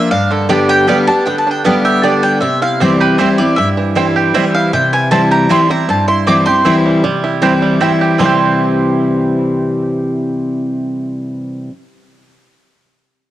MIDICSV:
0, 0, Header, 1, 5, 480
1, 0, Start_track
1, 0, Key_signature, 0, "major"
1, 0, Tempo, 385109
1, 135, Time_signature, 3, 2, 24, 8
1, 16587, End_track
2, 0, Start_track
2, 0, Title_t, "Mandolin"
2, 0, Program_c, 0, 25
2, 0, Note_on_c, 0, 76, 110
2, 132, Note_off_c, 0, 76, 0
2, 137, Note_on_c, 0, 77, 98
2, 376, Note_off_c, 0, 77, 0
2, 390, Note_on_c, 0, 69, 57
2, 611, Note_off_c, 0, 69, 0
2, 619, Note_on_c, 0, 74, 88
2, 857, Note_off_c, 0, 74, 0
2, 864, Note_on_c, 0, 79, 122
2, 1088, Note_off_c, 0, 79, 0
2, 1110, Note_on_c, 0, 77, 82
2, 1335, Note_off_c, 0, 77, 0
2, 1340, Note_on_c, 0, 81, 116
2, 1562, Note_off_c, 0, 81, 0
2, 1567, Note_on_c, 0, 79, 73
2, 1719, Note_off_c, 0, 79, 0
2, 1724, Note_on_c, 0, 81, 91
2, 1876, Note_off_c, 0, 81, 0
2, 1881, Note_on_c, 0, 79, 80
2, 2042, Note_off_c, 0, 79, 0
2, 2055, Note_on_c, 0, 77, 87
2, 2294, Note_off_c, 0, 77, 0
2, 2302, Note_on_c, 0, 76, 98
2, 2526, Note_off_c, 0, 76, 0
2, 2535, Note_on_c, 0, 74, 84
2, 2774, Note_off_c, 0, 74, 0
2, 2775, Note_on_c, 0, 79, 102
2, 2990, Note_off_c, 0, 79, 0
2, 2995, Note_on_c, 0, 76, 77
2, 3244, Note_off_c, 0, 76, 0
2, 3265, Note_on_c, 0, 77, 101
2, 3487, Note_off_c, 0, 77, 0
2, 3503, Note_on_c, 0, 74, 79
2, 3738, Note_off_c, 0, 74, 0
2, 3748, Note_on_c, 0, 71, 82
2, 3964, Note_off_c, 0, 71, 0
2, 3969, Note_on_c, 0, 72, 73
2, 4208, Note_off_c, 0, 72, 0
2, 4213, Note_on_c, 0, 74, 90
2, 4439, Note_on_c, 0, 76, 83
2, 4441, Note_off_c, 0, 74, 0
2, 4591, Note_off_c, 0, 76, 0
2, 5418, Note_on_c, 0, 76, 83
2, 5655, Note_off_c, 0, 76, 0
2, 5668, Note_on_c, 0, 77, 97
2, 5889, Note_off_c, 0, 77, 0
2, 5905, Note_on_c, 0, 79, 81
2, 6139, Note_off_c, 0, 79, 0
2, 6147, Note_on_c, 0, 80, 102
2, 6369, Note_off_c, 0, 80, 0
2, 6374, Note_on_c, 0, 81, 96
2, 6613, Note_off_c, 0, 81, 0
2, 6626, Note_on_c, 0, 82, 109
2, 6848, Note_off_c, 0, 82, 0
2, 6871, Note_on_c, 0, 84, 113
2, 7102, Note_off_c, 0, 84, 0
2, 7114, Note_on_c, 0, 82, 100
2, 7332, Note_off_c, 0, 82, 0
2, 7352, Note_on_c, 0, 81, 79
2, 7571, Note_off_c, 0, 81, 0
2, 7576, Note_on_c, 0, 84, 95
2, 7803, Note_off_c, 0, 84, 0
2, 7817, Note_on_c, 0, 86, 93
2, 8044, Note_off_c, 0, 86, 0
2, 8049, Note_on_c, 0, 84, 118
2, 8500, Note_off_c, 0, 84, 0
2, 10213, Note_on_c, 0, 84, 79
2, 14165, Note_off_c, 0, 84, 0
2, 16587, End_track
3, 0, Start_track
3, 0, Title_t, "Mandolin"
3, 0, Program_c, 1, 25
3, 614, Note_on_c, 1, 59, 83
3, 619, Note_on_c, 1, 67, 95
3, 622, Note_on_c, 1, 74, 87
3, 626, Note_on_c, 1, 79, 102
3, 730, Note_off_c, 1, 59, 0
3, 733, Note_off_c, 1, 67, 0
3, 734, Note_off_c, 1, 74, 0
3, 736, Note_off_c, 1, 79, 0
3, 1089, Note_on_c, 1, 59, 90
3, 1094, Note_on_c, 1, 67, 88
3, 1100, Note_on_c, 1, 74, 111
3, 1103, Note_on_c, 1, 79, 108
3, 1207, Note_off_c, 1, 59, 0
3, 1210, Note_off_c, 1, 67, 0
3, 1213, Note_off_c, 1, 74, 0
3, 1214, Note_off_c, 1, 79, 0
3, 2050, Note_on_c, 1, 59, 85
3, 2058, Note_on_c, 1, 67, 79
3, 2063, Note_on_c, 1, 74, 77
3, 2067, Note_on_c, 1, 79, 97
3, 2167, Note_off_c, 1, 59, 0
3, 2171, Note_off_c, 1, 67, 0
3, 2174, Note_off_c, 1, 74, 0
3, 2176, Note_off_c, 1, 79, 0
3, 2529, Note_on_c, 1, 59, 79
3, 2533, Note_on_c, 1, 67, 91
3, 2537, Note_on_c, 1, 74, 82
3, 2542, Note_on_c, 1, 79, 102
3, 2647, Note_off_c, 1, 59, 0
3, 2649, Note_off_c, 1, 67, 0
3, 2651, Note_off_c, 1, 74, 0
3, 2653, Note_off_c, 1, 79, 0
3, 3492, Note_on_c, 1, 60, 76
3, 3498, Note_on_c, 1, 64, 78
3, 3502, Note_on_c, 1, 72, 90
3, 3507, Note_on_c, 1, 79, 89
3, 3608, Note_off_c, 1, 60, 0
3, 3611, Note_off_c, 1, 64, 0
3, 3613, Note_off_c, 1, 72, 0
3, 3615, Note_off_c, 1, 79, 0
3, 3962, Note_on_c, 1, 60, 90
3, 3968, Note_on_c, 1, 64, 104
3, 3975, Note_on_c, 1, 72, 94
3, 3980, Note_on_c, 1, 79, 100
3, 4083, Note_off_c, 1, 60, 0
3, 4086, Note_off_c, 1, 64, 0
3, 4089, Note_off_c, 1, 72, 0
3, 4092, Note_off_c, 1, 79, 0
3, 4933, Note_on_c, 1, 60, 85
3, 4941, Note_on_c, 1, 64, 79
3, 4943, Note_on_c, 1, 72, 96
3, 4948, Note_on_c, 1, 79, 92
3, 5048, Note_off_c, 1, 60, 0
3, 5052, Note_off_c, 1, 64, 0
3, 5053, Note_off_c, 1, 72, 0
3, 5056, Note_off_c, 1, 79, 0
3, 5413, Note_on_c, 1, 60, 83
3, 5419, Note_on_c, 1, 64, 105
3, 5421, Note_on_c, 1, 72, 103
3, 5426, Note_on_c, 1, 79, 99
3, 5528, Note_off_c, 1, 60, 0
3, 5531, Note_off_c, 1, 64, 0
3, 5532, Note_off_c, 1, 72, 0
3, 5535, Note_off_c, 1, 79, 0
3, 6372, Note_on_c, 1, 60, 91
3, 6380, Note_on_c, 1, 72, 91
3, 6381, Note_on_c, 1, 64, 87
3, 6388, Note_on_c, 1, 79, 101
3, 6488, Note_off_c, 1, 60, 0
3, 6492, Note_off_c, 1, 64, 0
3, 6492, Note_off_c, 1, 72, 0
3, 6496, Note_off_c, 1, 79, 0
3, 6850, Note_on_c, 1, 60, 92
3, 6858, Note_on_c, 1, 64, 86
3, 6859, Note_on_c, 1, 72, 96
3, 6865, Note_on_c, 1, 79, 112
3, 6967, Note_off_c, 1, 60, 0
3, 6971, Note_off_c, 1, 64, 0
3, 6971, Note_off_c, 1, 72, 0
3, 6974, Note_off_c, 1, 79, 0
3, 7812, Note_on_c, 1, 60, 83
3, 7818, Note_on_c, 1, 64, 87
3, 7823, Note_on_c, 1, 72, 76
3, 7827, Note_on_c, 1, 79, 99
3, 7928, Note_off_c, 1, 60, 0
3, 7931, Note_off_c, 1, 64, 0
3, 7933, Note_off_c, 1, 72, 0
3, 7935, Note_off_c, 1, 79, 0
3, 8287, Note_on_c, 1, 60, 89
3, 8295, Note_on_c, 1, 64, 87
3, 8298, Note_on_c, 1, 72, 95
3, 8304, Note_on_c, 1, 79, 100
3, 8406, Note_off_c, 1, 60, 0
3, 8409, Note_off_c, 1, 64, 0
3, 8411, Note_off_c, 1, 72, 0
3, 8414, Note_off_c, 1, 79, 0
3, 9249, Note_on_c, 1, 60, 86
3, 9252, Note_on_c, 1, 64, 94
3, 9261, Note_on_c, 1, 72, 93
3, 9264, Note_on_c, 1, 79, 89
3, 9367, Note_off_c, 1, 60, 0
3, 9368, Note_off_c, 1, 64, 0
3, 9373, Note_off_c, 1, 72, 0
3, 9374, Note_off_c, 1, 79, 0
3, 9727, Note_on_c, 1, 60, 94
3, 9730, Note_on_c, 1, 64, 96
3, 9739, Note_on_c, 1, 72, 87
3, 9740, Note_on_c, 1, 79, 100
3, 9846, Note_off_c, 1, 60, 0
3, 9847, Note_off_c, 1, 64, 0
3, 9852, Note_off_c, 1, 72, 0
3, 9852, Note_off_c, 1, 79, 0
3, 10197, Note_on_c, 1, 60, 82
3, 10208, Note_on_c, 1, 64, 79
3, 10222, Note_on_c, 1, 72, 94
3, 10234, Note_on_c, 1, 79, 90
3, 14560, Note_off_c, 1, 60, 0
3, 14570, Note_off_c, 1, 64, 0
3, 14584, Note_off_c, 1, 72, 0
3, 14597, Note_off_c, 1, 79, 0
3, 16587, End_track
4, 0, Start_track
4, 0, Title_t, "Five-string banjo"
4, 0, Program_c, 2, 105
4, 0, Note_on_c, 2, 58, 63
4, 0, Note_on_c, 2, 62, 72
4, 132, Note_off_c, 2, 62, 0
4, 134, Note_off_c, 2, 58, 0
4, 137, Note_on_c, 2, 62, 60
4, 383, Note_on_c, 2, 50, 62
4, 603, Note_off_c, 2, 62, 0
4, 618, Note_on_c, 2, 62, 58
4, 875, Note_on_c, 2, 67, 61
4, 1048, Note_off_c, 2, 50, 0
4, 1102, Note_on_c, 2, 55, 72
4, 1294, Note_off_c, 2, 62, 0
4, 1349, Note_on_c, 2, 62, 56
4, 1583, Note_on_c, 2, 59, 67
4, 1815, Note_off_c, 2, 62, 0
4, 1830, Note_on_c, 2, 62, 61
4, 2041, Note_off_c, 2, 59, 0
4, 2056, Note_on_c, 2, 59, 60
4, 2297, Note_off_c, 2, 67, 0
4, 2302, Note_on_c, 2, 67, 57
4, 2491, Note_off_c, 2, 62, 0
4, 2537, Note_on_c, 2, 62, 68
4, 2732, Note_off_c, 2, 59, 0
4, 2773, Note_off_c, 2, 55, 0
4, 2778, Note_on_c, 2, 55, 58
4, 3012, Note_on_c, 2, 60, 57
4, 3014, Note_off_c, 2, 62, 0
4, 3261, Note_on_c, 2, 64, 58
4, 3486, Note_off_c, 2, 60, 0
4, 3491, Note_on_c, 2, 60, 60
4, 3736, Note_off_c, 2, 67, 0
4, 3741, Note_on_c, 2, 67, 61
4, 3966, Note_off_c, 2, 64, 0
4, 3971, Note_on_c, 2, 64, 71
4, 4213, Note_off_c, 2, 55, 0
4, 4218, Note_on_c, 2, 55, 57
4, 4454, Note_off_c, 2, 64, 0
4, 4459, Note_on_c, 2, 64, 62
4, 4702, Note_on_c, 2, 52, 56
4, 4933, Note_off_c, 2, 64, 0
4, 4937, Note_on_c, 2, 64, 61
4, 5180, Note_off_c, 2, 67, 0
4, 5185, Note_on_c, 2, 67, 67
4, 5236, Note_off_c, 2, 60, 0
4, 5412, Note_off_c, 2, 55, 0
4, 5417, Note_on_c, 2, 55, 69
4, 5664, Note_off_c, 2, 64, 0
4, 5669, Note_on_c, 2, 64, 58
4, 5896, Note_off_c, 2, 64, 0
4, 5901, Note_on_c, 2, 64, 66
4, 6139, Note_off_c, 2, 52, 0
4, 6144, Note_on_c, 2, 52, 59
4, 6375, Note_off_c, 2, 64, 0
4, 6380, Note_on_c, 2, 64, 55
4, 6618, Note_off_c, 2, 67, 0
4, 6623, Note_on_c, 2, 67, 56
4, 6854, Note_off_c, 2, 55, 0
4, 6859, Note_on_c, 2, 55, 71
4, 7103, Note_off_c, 2, 64, 0
4, 7108, Note_on_c, 2, 64, 59
4, 7336, Note_on_c, 2, 60, 61
4, 7534, Note_off_c, 2, 55, 0
4, 7567, Note_off_c, 2, 64, 0
4, 7581, Note_on_c, 2, 64, 58
4, 7804, Note_off_c, 2, 60, 0
4, 7819, Note_on_c, 2, 60, 56
4, 7889, Note_off_c, 2, 52, 0
4, 8060, Note_off_c, 2, 67, 0
4, 8065, Note_on_c, 2, 67, 60
4, 8246, Note_off_c, 2, 64, 0
4, 8296, Note_on_c, 2, 64, 66
4, 8494, Note_off_c, 2, 60, 0
4, 8547, Note_on_c, 2, 55, 56
4, 8728, Note_off_c, 2, 67, 0
4, 8758, Note_off_c, 2, 55, 0
4, 8773, Note_on_c, 2, 55, 87
4, 8774, Note_off_c, 2, 64, 0
4, 9021, Note_on_c, 2, 64, 72
4, 9257, Note_on_c, 2, 67, 72
4, 9451, Note_off_c, 2, 55, 0
4, 9499, Note_on_c, 2, 55, 83
4, 9687, Note_off_c, 2, 64, 0
4, 9734, Note_on_c, 2, 64, 89
4, 9933, Note_off_c, 2, 67, 0
4, 9984, Note_on_c, 2, 67, 74
4, 10166, Note_off_c, 2, 55, 0
4, 10212, Note_on_c, 2, 55, 86
4, 10213, Note_off_c, 2, 64, 0
4, 10215, Note_off_c, 2, 67, 0
4, 10240, Note_on_c, 2, 60, 73
4, 10263, Note_on_c, 2, 64, 79
4, 10288, Note_on_c, 2, 67, 77
4, 14164, Note_off_c, 2, 55, 0
4, 14191, Note_off_c, 2, 60, 0
4, 14214, Note_off_c, 2, 64, 0
4, 14239, Note_off_c, 2, 67, 0
4, 16587, End_track
5, 0, Start_track
5, 0, Title_t, "Steel-string acoustic guitar"
5, 0, Program_c, 3, 25
5, 137, Note_on_c, 3, 43, 91
5, 611, Note_on_c, 3, 50, 78
5, 616, Note_on_c, 3, 55, 102
5, 619, Note_on_c, 3, 59, 92
5, 631, Note_on_c, 3, 67, 93
5, 1048, Note_off_c, 3, 43, 0
5, 1069, Note_off_c, 3, 50, 0
5, 1072, Note_off_c, 3, 55, 0
5, 1073, Note_off_c, 3, 59, 0
5, 1079, Note_off_c, 3, 67, 0
5, 1095, Note_on_c, 3, 50, 77
5, 1105, Note_on_c, 3, 55, 94
5, 1110, Note_on_c, 3, 59, 90
5, 1120, Note_on_c, 3, 67, 97
5, 1332, Note_off_c, 3, 50, 0
5, 1335, Note_off_c, 3, 67, 0
5, 1337, Note_off_c, 3, 55, 0
5, 1340, Note_off_c, 3, 59, 0
5, 1350, Note_on_c, 3, 67, 59
5, 1364, Note_on_c, 3, 59, 49
5, 1568, Note_off_c, 3, 67, 0
5, 1575, Note_off_c, 3, 59, 0
5, 1578, Note_on_c, 3, 50, 84
5, 2042, Note_off_c, 3, 50, 0
5, 2057, Note_on_c, 3, 50, 93
5, 2064, Note_on_c, 3, 55, 97
5, 2070, Note_on_c, 3, 59, 105
5, 2078, Note_on_c, 3, 67, 87
5, 2511, Note_off_c, 3, 50, 0
5, 2515, Note_off_c, 3, 55, 0
5, 2518, Note_off_c, 3, 59, 0
5, 2522, Note_off_c, 3, 67, 0
5, 2535, Note_on_c, 3, 50, 90
5, 2544, Note_on_c, 3, 55, 82
5, 2549, Note_on_c, 3, 59, 82
5, 2554, Note_on_c, 3, 67, 87
5, 2990, Note_off_c, 3, 50, 0
5, 2995, Note_off_c, 3, 55, 0
5, 2997, Note_off_c, 3, 59, 0
5, 3000, Note_off_c, 3, 67, 0
5, 3012, Note_on_c, 3, 48, 91
5, 3502, Note_on_c, 3, 52, 84
5, 3512, Note_on_c, 3, 55, 91
5, 3514, Note_on_c, 3, 60, 92
5, 3519, Note_on_c, 3, 64, 105
5, 3925, Note_off_c, 3, 48, 0
5, 3953, Note_off_c, 3, 52, 0
5, 3958, Note_off_c, 3, 55, 0
5, 3960, Note_off_c, 3, 60, 0
5, 3962, Note_off_c, 3, 64, 0
5, 3977, Note_on_c, 3, 52, 74
5, 3984, Note_on_c, 3, 55, 85
5, 3994, Note_on_c, 3, 60, 91
5, 4001, Note_on_c, 3, 64, 90
5, 4212, Note_off_c, 3, 52, 0
5, 4213, Note_off_c, 3, 64, 0
5, 4216, Note_off_c, 3, 55, 0
5, 4221, Note_off_c, 3, 60, 0
5, 4228, Note_on_c, 3, 64, 59
5, 4243, Note_on_c, 3, 60, 52
5, 4447, Note_off_c, 3, 64, 0
5, 4454, Note_off_c, 3, 60, 0
5, 4462, Note_on_c, 3, 43, 87
5, 4928, Note_on_c, 3, 52, 83
5, 4936, Note_on_c, 3, 55, 86
5, 4944, Note_on_c, 3, 60, 99
5, 4946, Note_on_c, 3, 64, 92
5, 5370, Note_off_c, 3, 43, 0
5, 5386, Note_off_c, 3, 52, 0
5, 5390, Note_off_c, 3, 55, 0
5, 5394, Note_off_c, 3, 60, 0
5, 5396, Note_off_c, 3, 64, 0
5, 5419, Note_on_c, 3, 52, 90
5, 5425, Note_on_c, 3, 55, 84
5, 5426, Note_on_c, 3, 60, 89
5, 5436, Note_on_c, 3, 64, 84
5, 5872, Note_off_c, 3, 52, 0
5, 5875, Note_off_c, 3, 55, 0
5, 5875, Note_off_c, 3, 60, 0
5, 5881, Note_off_c, 3, 64, 0
5, 5899, Note_on_c, 3, 48, 93
5, 6370, Note_on_c, 3, 52, 94
5, 6379, Note_on_c, 3, 55, 90
5, 6382, Note_on_c, 3, 60, 95
5, 6389, Note_on_c, 3, 64, 102
5, 6809, Note_off_c, 3, 48, 0
5, 6828, Note_off_c, 3, 52, 0
5, 6832, Note_off_c, 3, 55, 0
5, 6833, Note_off_c, 3, 60, 0
5, 6837, Note_off_c, 3, 64, 0
5, 6848, Note_on_c, 3, 52, 79
5, 6859, Note_on_c, 3, 55, 88
5, 6860, Note_on_c, 3, 60, 93
5, 6867, Note_on_c, 3, 64, 88
5, 7077, Note_off_c, 3, 64, 0
5, 7088, Note_off_c, 3, 52, 0
5, 7092, Note_on_c, 3, 64, 57
5, 7093, Note_off_c, 3, 55, 0
5, 7094, Note_off_c, 3, 60, 0
5, 7107, Note_on_c, 3, 60, 52
5, 7318, Note_off_c, 3, 64, 0
5, 7326, Note_off_c, 3, 60, 0
5, 7339, Note_on_c, 3, 43, 85
5, 7826, Note_on_c, 3, 52, 94
5, 7829, Note_on_c, 3, 55, 81
5, 7835, Note_on_c, 3, 60, 99
5, 7842, Note_on_c, 3, 64, 94
5, 8045, Note_off_c, 3, 64, 0
5, 8057, Note_off_c, 3, 52, 0
5, 8058, Note_off_c, 3, 55, 0
5, 8060, Note_on_c, 3, 64, 65
5, 8061, Note_off_c, 3, 60, 0
5, 8080, Note_on_c, 3, 60, 49
5, 8249, Note_off_c, 3, 43, 0
5, 8283, Note_off_c, 3, 64, 0
5, 8292, Note_on_c, 3, 52, 81
5, 8293, Note_off_c, 3, 60, 0
5, 8299, Note_on_c, 3, 55, 91
5, 8306, Note_on_c, 3, 60, 96
5, 8307, Note_on_c, 3, 64, 100
5, 8749, Note_off_c, 3, 52, 0
5, 8752, Note_off_c, 3, 55, 0
5, 8756, Note_off_c, 3, 60, 0
5, 8756, Note_off_c, 3, 64, 0
5, 8774, Note_on_c, 3, 48, 82
5, 9243, Note_on_c, 3, 52, 90
5, 9246, Note_on_c, 3, 55, 94
5, 9250, Note_on_c, 3, 60, 91
5, 9258, Note_on_c, 3, 64, 104
5, 9687, Note_off_c, 3, 48, 0
5, 9705, Note_off_c, 3, 52, 0
5, 9706, Note_off_c, 3, 55, 0
5, 9708, Note_off_c, 3, 60, 0
5, 9712, Note_off_c, 3, 64, 0
5, 9731, Note_on_c, 3, 52, 77
5, 9736, Note_on_c, 3, 55, 77
5, 9746, Note_on_c, 3, 60, 93
5, 9753, Note_on_c, 3, 64, 90
5, 10189, Note_off_c, 3, 52, 0
5, 10191, Note_off_c, 3, 55, 0
5, 10196, Note_off_c, 3, 60, 0
5, 10200, Note_off_c, 3, 64, 0
5, 10209, Note_on_c, 3, 48, 80
5, 10220, Note_on_c, 3, 52, 78
5, 10223, Note_on_c, 3, 55, 80
5, 10230, Note_on_c, 3, 60, 80
5, 10238, Note_on_c, 3, 64, 85
5, 14571, Note_off_c, 3, 48, 0
5, 14582, Note_off_c, 3, 52, 0
5, 14585, Note_off_c, 3, 55, 0
5, 14592, Note_off_c, 3, 60, 0
5, 14601, Note_off_c, 3, 64, 0
5, 16587, End_track
0, 0, End_of_file